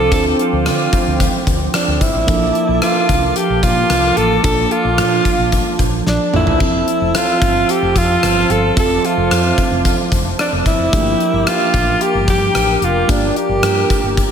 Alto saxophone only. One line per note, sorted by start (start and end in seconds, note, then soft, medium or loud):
0.00 0.11 A4 loud
0.14 0.25 A4 medium
0.41 1.44 F4 medium
1.75 2.03 D4 medium
2.01 2.82 E4 medium
2.83 3.37 F4 medium
3.36 3.64 G4 medium
3.63 4.18 F4 medium
4.17 4.44 A4 loud
4.44 4.73 A4 medium
4.71 5.79 F4 medium
6.08 6.32 D4 medium
6.36 7.18 E4 medium
7.17 7.72 F4 medium
7.70 7.99 G4 medium
7.97 8.52 F4 loud
8.51 8.77 A4 loud
8.79 9.07 A4 medium
9.05 10.13 F4 medium
10.40 10.52 D4 medium
10.67 11.50 E4 medium
11.48 12.03 F4 medium
12.02 12.28 G4 medium
12.30 12.85 G4 loud
12.84 13.11 F4 medium
13.10 13.38 D4 medium
13.37 14.31 G4 medium